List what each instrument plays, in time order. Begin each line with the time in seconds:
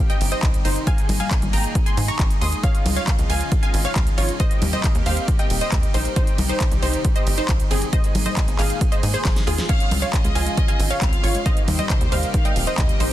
Already playing: analog synth pad C3 D#3 G3 D#4 G4
0.10 synth pluck D#5 G5, grand piano G5, closed hi-hat
0.21 analog synth bass G1, open hi-hat, ride
0.32 synth pluck C5 D#5, grand piano D#5, closed hi-hat
0.43 analog synth bass C2, kick, clap, closed hi-hat
0.54 closed hi-hat
0.65 analog synth bass G1, synth pluck D#4 C5, grand piano C5, open hi-hat, ride
0.76 closed hi-hat
0.87 analog synth pad A#2 G#3 D#4 G#4, synth pluck F5 G#5, grand piano G#5, kick, closed hi-hat
0.98 closed hi-hat
1.09 analog synth bass G#1, open hi-hat, ride, high conga
1.20 synth pluck F5 G#5, grand piano G#5, closed hi-hat, high conga
1.31 kick, clap, closed hi-hat
1.42 analog synth bass G#1, closed hi-hat, high conga
1.53 analog synth bass G#1, synth pluck G5 A#5, grand piano A#5, open hi-hat, ride
1.64 closed hi-hat
1.75 kick, closed hi-hat
1.86 synth pluck G#5 C6, grand piano C6, closed hi-hat
1.97 analog synth bass G#2, open hi-hat, ride
2.08 synth pluck A#5 C#6, grand piano C#6, closed hi-hat
2.19 analog synth bass G#1, kick, clap, closed hi-hat
2.30 closed hi-hat
2.41 analog synth bass D#2, synth pluck C6 D#6, grand piano D#6, open hi-hat, ride
2.53 closed hi-hat
2.63 analog synth pad C#3 F3 F4, synth pluck C#5 F5, grand piano F5, kick, closed hi-hat
2.75 closed hi-hat
2.86 analog synth bass C#2, open hi-hat, ride, high conga
2.96 synth pluck C#5 F5, grand piano F5, closed hi-hat
3.08 kick, clap, closed hi-hat
3.19 analog synth bass C#2, closed hi-hat
3.30 analog synth bass C#2, synth pluck F5 G#5, grand piano G#5, open hi-hat, ride
3.41 closed hi-hat
3.52 kick, closed hi-hat
3.63 synth pluck F5 G#5, grand piano G#5, closed hi-hat
3.74 analog synth bass G#1, open hi-hat, ride
3.85 synth pluck C#5 F5, grand piano F5, closed hi-hat
3.96 analog synth bass C#2, kick, clap, closed hi-hat
4.07 closed hi-hat
4.18 analog synth bass G#1, synth pluck F4 C#5, grand piano C#5, open hi-hat, ride
4.29 closed hi-hat
4.40 analog synth pad C3 G3 A#3 G4, synth pluck C5 D#5, grand piano D#5, kick, closed hi-hat
4.51 closed hi-hat
4.62 analog synth bass D#2, open hi-hat, ride, high conga
4.73 synth pluck C5 D#5, grand piano D#5, closed hi-hat, high conga
4.84 kick, clap, closed hi-hat
4.95 analog synth bass D#2, closed hi-hat
5.06 analog synth bass D#2, synth pluck C5 F5, grand piano F5, open hi-hat, ride
5.17 closed hi-hat
5.28 kick, closed hi-hat
5.39 synth pluck D#5 G5, grand piano G5, closed hi-hat
5.50 analog synth bass D#1, open hi-hat, ride
5.61 synth pluck C5 D#5, grand piano D#5, closed hi-hat
5.72 analog synth bass D#2, kick, clap, closed hi-hat
5.83 closed hi-hat
5.94 analog synth bass A#1, synth pluck D#4 C5, grand piano C5, open hi-hat, ride
6.05 closed hi-hat
6.16 analog synth pad C3 D#3 G3, synth pluck D#4 C5, grand piano C5, kick, closed hi-hat
6.27 closed hi-hat
6.38 analog synth bass C2, open hi-hat, ride, high conga
6.49 synth pluck D#4 C5, grand piano C5, closed hi-hat
6.60 kick, clap, closed hi-hat
6.71 analog synth bass C2, closed hi-hat
6.82 analog synth bass C2, synth pluck D#4 C5, grand piano C5, open hi-hat, ride
6.94 closed hi-hat
7.05 kick, closed hi-hat
7.16 synth pluck C5 D#5, grand piano D#5, closed hi-hat
7.27 analog synth bass G1, open hi-hat, ride
7.38 synth pluck D#4 C5, grand piano C5, closed hi-hat
7.49 analog synth bass C2, kick, clap, closed hi-hat
7.60 closed hi-hat
7.71 analog synth bass G1, synth pluck C4 G#4, grand piano G#4, open hi-hat, ride
7.82 closed hi-hat
7.93 analog synth pad A#2 D#3 G#3 G#4, synth pluck C5 D#5, grand piano D#5, kick, closed hi-hat
8.04 closed hi-hat
8.15 analog synth bass G#1, open hi-hat, ride, high conga
8.26 synth pluck C5 D#5, grand piano D#5, closed hi-hat, high conga
8.37 kick, clap, closed hi-hat
8.48 analog synth bass G#1, closed hi-hat
8.59 analog synth bass G#1, synth pluck G#4 F5, grand piano F5, clap, open hi-hat, ride
8.70 closed hi-hat
8.81 kick, closed hi-hat
8.92 synth pluck C5 D#5, grand piano D#5, closed hi-hat
9.03 analog synth bass G#2, open hi-hat, ride
9.14 synth pluck G#4 C5, grand piano C5, closed hi-hat
9.25 analog synth bass G#1, kick, snare, clap, closed hi-hat
9.36 snare, closed hi-hat
9.47 analog synth bass D#2, synth pluck F4 G#4, grand piano G#4, open hi-hat, ride
9.58 snare, closed hi-hat
9.69 analog synth pad C#3 F3 F4, synth arpeggio sound C#4, synth pluck C#5 F5, grand piano F5, violin section F5, kick, closed hi-hat, crash
9.80 closed hi-hat
9.91 analog synth bass C#2, synth arpeggio sound C4, open hi-hat, ride, high conga
10.02 synth pluck C#5 F5, synth arpeggio sound C#5, grand piano F5, closed hi-hat
10.13 violin section D#5, kick, clap, closed hi-hat
10.24 analog synth bass C#2, synth arpeggio sound G#3, closed hi-hat
10.35 analog synth bass C#2, synth arpeggio sound F4, synth pluck F5 G#5, grand piano G#5, open hi-hat, ride
10.46 synth arpeggio sound G#3, closed hi-hat
10.57 synth arpeggio sound C#4, kick, closed hi-hat
10.68 synth arpeggio sound C#3, synth pluck F5 G#5, grand piano G#5, closed hi-hat
10.80 analog synth bass G#1, synth arpeggio sound C4, open hi-hat, ride
10.90 synth pluck C#5 F5, synth arpeggio sound C#5, grand piano F5, closed hi-hat
11.02 analog synth bass C#2, synth arpeggio sound C4, violin section F5, kick, clap, closed hi-hat
11.13 synth arpeggio sound F4, closed hi-hat
11.23 analog synth bass G#1, synth pluck F4 C#5, grand piano C#5, open hi-hat, ride
11.35 synth arpeggio sound G#3, closed hi-hat
11.46 analog synth pad C3 G3 A#3 D#4 G4, synth arpeggio sound D#3, synth pluck C5 D#5, grand piano D#5, kick, closed hi-hat
11.57 synth arpeggio sound D#2, closed hi-hat
11.68 analog synth bass D#2, synth arpeggio sound D#3, violin section C5, open hi-hat, ride, high conga
11.79 synth arpeggio sound G3, synth pluck C5 D#5, grand piano D#5, closed hi-hat, high conga
11.90 synth arpeggio sound C3, kick, clap, closed hi-hat
12.01 analog synth bass D#2, synth arpeggio sound G3, closed hi-hat
12.12 analog synth bass D#2, synth arpeggio sound G3, synth pluck C5 F5, grand piano F5, open hi-hat, ride
12.23 closed hi-hat
12.34 synth arpeggio sound D#3, violin section F5, kick, closed hi-hat
12.45 synth arpeggio sound G3, synth pluck D#5 G5, grand piano G5, closed hi-hat
12.56 analog synth bass D#1, synth arpeggio sound F3, open hi-hat, ride
12.67 synth arpeggio sound D#4, synth pluck C5 D#5, grand piano D#5, closed hi-hat
12.78 analog synth bass D#2, synth arpeggio sound C3, violin section D#5, kick, clap, closed hi-hat
12.89 synth arpeggio sound G3, closed hi-hat
13.00 analog synth bass A#1, synth pluck D#4 C5, grand piano C5, open hi-hat, ride